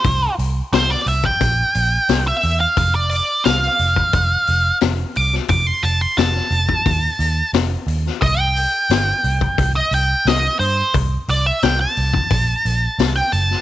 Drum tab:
HH |o-o-o-o-o-o-o-o-|o-o-o-o-o-o-o-o-|o-o-o-o-o-o-o-o-|o-o-o-o-o-o-o-o-|
SD |----oo------o---|----oo------o--o|----oo------o--o|----o-------o---|
BD |o------oo-------|o------oo-------|o------oo-------|o------oo-------|

HH |o-o-o-o-o-o-o-o-|
SD |----o-------o--o|
BD |o------oo-------|